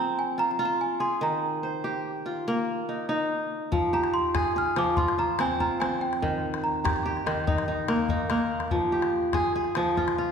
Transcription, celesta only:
Already playing: A#5
0.19 G#5
0.39 A#5
0.51 A#5
0.65 A#5
0.81 G#5
1.01 C6
1.23 A#5
3.94 A#5
4.14 C6
4.58 F6
4.79 D6
4.97 C6
5.19 A#5
5.41 G#5
5.61 A#5
5.80 G#5
6.01 G5
6.64 A#5
6.84 A#5

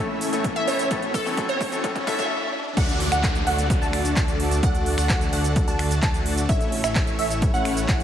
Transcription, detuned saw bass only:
Already playing: A1
0.33 A1
0.68 A1
0.91 A1
1.26 A1
1.37 A1
1.72 A1
1.84 A1
2.07 A1
2.77 D2
3.12 D2
3.47 D2
3.82 D2
4.16 D2
4.63 D2
4.98 D2
5.33 D2
5.68 D2
6.03 D2
6.49 A1
6.84 A1
7.19 A1
7.54 A1
7.89 A1

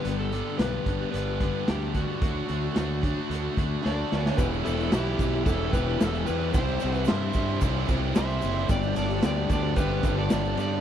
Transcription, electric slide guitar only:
Already playing: B4
0.19 A4
0.58 B4
1.12 B4
1.68 G4
1.94 F#4
3.86 D5
4.26 C#5
4.37 B4
4.65 A4
4.93 G4
5.46 A4
5.73 B4
6.00 A4
6.26 B4
6.53 C5
6.94 B4
7.08 E5
8.17 E5
8.71 D5
8.98 D5
9.26 D5
9.53 D5
9.77 B4
10.19 D5
10.61 D5

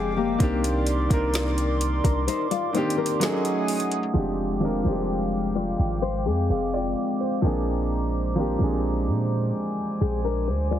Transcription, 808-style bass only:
Already playing: F1
0.40 C2
1.11 C2
2.04 C2
4.15 F1
4.86 F1
5.79 G#1
6.26 F2
6.50 F1
7.43 A#1
8.61 A#1
9.08 A#2
10.01 A#1
10.48 D2

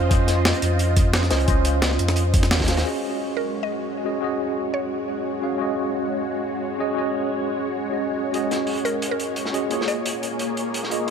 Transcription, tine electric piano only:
Already playing: C#4 F4 C5 D#5 F5
0.09 C#4 F4 C5 D#5
1.30 C#4 F4 C5 D#5
1.46 C#4 F4 C5 D#5
2.67 C#4 F4 C5 F5
2.83 C#4 F#4 G#4 D#5
4.04 C#4 F#4 G#4 D#5
4.21 C#4 F#4 G#4 D#5
5.42 C#4 F#4 G#4 F5
5.58 C#4 F#4 G#4 D#5
6.79 C#4 F#4 G#4 D#5
6.95 C#4 F#4 G#4 D#5
7.90 C#4 F#4 G#4 D#5
8.32 C#4 F#4 G#4 D#5
9.53 C#4 F#4 G#4 D#5
9.69 A#3 F4 G#4 C#5
10.90 A#3 F4 G#4 D#5
11.06 A#3

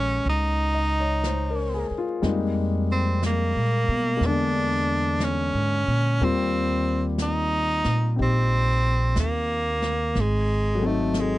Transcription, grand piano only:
Already playing: G#3 A#3 C#4 D#4
0.74 D#5
1.00 C#5
1.27 C5
1.50 A#4
1.74 G#4
1.98 F4
2.22 G3 G#3 A#3 D#4
4.17 G#3
4.21 A#3
4.27 D3
6.21 G3 A#3 C4 F4
8.16 C4 D#4 G4
10.75 F#3 A4
10.82 C4 D#4

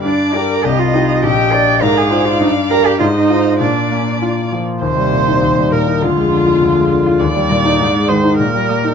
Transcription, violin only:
0.04 D5
0.64 D#5
1.23 G5
1.82 F5
2.99 D#5
3.60 D5
4.83 C5
5.73 A#4
6.02 F4
7.49 A#5
8.09 D#6
8.69 D#6

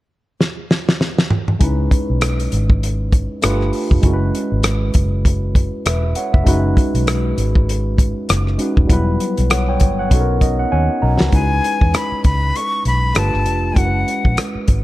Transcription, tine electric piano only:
1.59 G#3 C#4 D#4 E4
1.64 B4
3.42 A3 D4 F4 G4 B4
4.02 G#3 C#4 E4
4.06 F#4 A#4
4.13 B4
5.86 B4 E5
6.16 C#5 F#5
6.34 B4 E5
6.43 G#3 C#4 D#4 F#4
6.49 B4
8.58 G#3 C#4 D#4 F#4 B4
8.87 F#3 G3 B3 E4
8.93 B4
9.50 C#5 F#5
9.69 C#5 G5
9.99 C#5 F#5
10.09 B3 C#4 D#4
10.13 F#4 A4
10.21 A#4
10.42 D#5
10.59 F#5
10.72 C#5 F#5 G#5
11.02 A#4 D#5 A#5
11.20 F#4 B4
11.30 G#3 C#4 D#4 E4
11.35 B4
13.14 A3 D4 F4 G4 B4
13.73 G#3 C#4 E4
13.77 F#4 A#4
13.85 B4

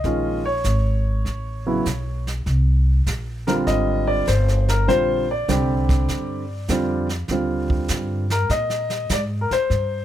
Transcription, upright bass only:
0.04 A#1
0.64 G#1
1.25 A1
1.85 B1
2.46 C2
3.07 A#1
3.67 G#1
4.27 G1
4.88 A#1
5.48 C2
6.08 G2
6.68 F2
7.29 D#2
7.89 G2
8.50 A#2
9.10 G#2
9.50 muted upright bass stroke
9.70 G2

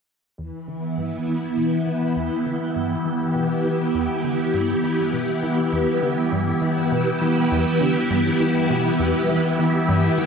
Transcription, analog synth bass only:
0.38 E2
0.68 D3
0.97 G2
1.27 E3
1.57 B2
1.86 E3
2.16 E2
2.46 D3
2.76 G2
3.05 E3
3.35 B2
3.65 E3
3.94 E2
4.24 D3
4.54 G2
4.84 E3
5.13 B2
5.43 E3
5.72 E2
6.02 D3
6.32 G2
6.62 E3
6.92 B2
7.21 E3
7.51 E2
7.81 D3
8.10 G2
8.40 E3
8.70 B2
8.99 E2
9.29 E3
9.59 E3
9.88 G2
10.18 E3

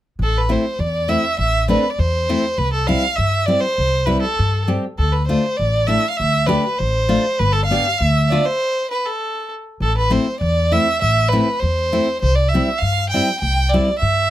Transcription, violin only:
0.23 A4
0.38 B4
0.52 C5
0.80 D5
1.09 E5
1.39 E5
1.71 B4
1.90 D5
1.99 C5
2.58 B4
2.73 A4
2.87 F5
3.16 E5
3.46 D5
3.61 C5
4.06 B4
4.22 A4
4.98 A4
5.13 B4
5.27 C5
5.57 D5
5.87 E5
6.10 F5
6.17 E5
6.47 B4
6.79 C5
7.40 B4
7.53 A4
7.65 F5
7.99 E5
8.27 D5 E5
8.46 C5
8.91 B4
9.06 A4
9.82 A4
9.98 B4
10.12 C5
10.40 D5
10.73 E5
11.02 E5
11.29 B4
11.60 C5
12.21 C5
12.35 D5
12.48 E5
12.78 F5
13.10 G5
13.40 G5
13.69 D5
13.99 E5

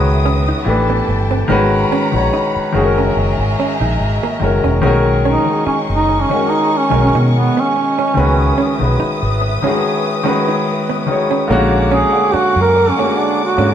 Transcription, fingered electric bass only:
Already playing: C#2
0.66 A1
1.08 G1
1.50 G#1
2.14 A#1
2.56 muted fingered electric bass stroke
2.75 F#1
3.16 F#1
3.39 G#1
3.81 A#1
4.00 G#1
4.41 F#1
4.64 E1
4.83 B1
5.66 muted fingered electric bass stroke
5.90 F#1
6.92 B1
7.15 B2
8.17 C#2
8.81 B1
9.00 muted fingered electric bass stroke
9.23 G#1
11.50 A#1
12.33 muted fingered electric bass stroke
12.56 F#2
13.58 G#2

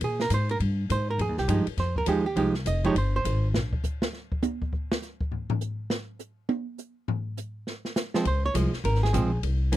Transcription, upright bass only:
0.01 A#2
0.30 G#2
0.60 G2
0.90 G#2
1.19 F2
1.29 D#2
1.38 C2
1.48 G2
1.67 muted upright bass stroke
1.77 F2
2.06 D#2
2.36 C2
2.65 F1
2.95 G1
3.25 G#1
3.54 A#1
8.25 C#2
8.54 C2
8.73 muted upright bass stroke
8.84 G#1
9.14 A#1
9.43 C2
9.72 F2

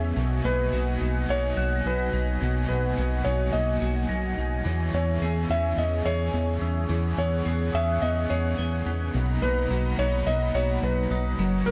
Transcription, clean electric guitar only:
Already playing: E3 B3 C#4 G#4
0.16 B2
0.44 A#3
0.72 F#4
1.00 D#4
1.29 A#3
1.57 F#4
2.13 D#4
2.42 B2
2.97 F#4
3.26 D#4
3.54 A#3
3.82 F#4
4.10 A#3
4.38 D#4
4.65 E3
4.94 B3
5.22 G#4
5.50 C#4
5.78 B3
6.05 G#4
6.34 B3
6.61 C#4
6.90 E3
7.17 B3
7.45 G#4
7.74 C#4
8.02 B3
8.30 G#4
8.58 B3
8.86 C#4
9.14 B2
9.42 A#3
9.70 F#4
9.99 D#4
10.27 A#3
10.55 F#4
11.11 D#4
11.39 F#3
11.67 A#3

